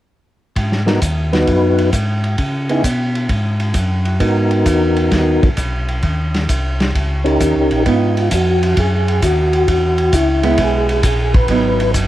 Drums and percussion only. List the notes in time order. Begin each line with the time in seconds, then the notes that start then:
0.56 kick, ride
0.72 snare
0.87 snare, ride
1.02 kick, hi-hat pedal, ride
1.33 snare, ride
1.47 kick, ride
1.78 ride
1.93 kick, hi-hat pedal, ride
2.24 ride
2.38 kick, ride
2.69 ride
2.84 kick, hi-hat pedal, ride
3.15 ride
3.29 kick, ride
3.60 ride
3.74 kick, hi-hat pedal, ride
4.05 ride
4.20 kick, ride
4.51 ride
4.66 kick, hi-hat pedal, ride
4.96 ride
5.11 kick, snare, ride
5.43 kick, ride
5.57 kick, hi-hat pedal, ride
5.88 ride
6.03 kick, ride
6.34 snare, ride
6.49 kick, hi-hat pedal, ride
6.80 snare, ride
6.95 kick, ride
7.26 ride
7.40 kick, hi-hat pedal, ride
7.71 ride
7.86 kick, ride
8.17 ride
8.31 kick, hi-hat pedal, ride
8.63 ride
8.77 kick, ride
9.08 ride
9.22 kick, hi-hat pedal, ride
9.53 ride
9.68 kick, ride
9.98 ride
10.13 kick, hi-hat pedal, ride
10.43 ride
10.58 kick, ride
10.89 ride
11.03 kick, hi-hat pedal, ride
11.34 kick, ride
11.48 kick, ride
11.80 ride
11.94 kick, hi-hat pedal, ride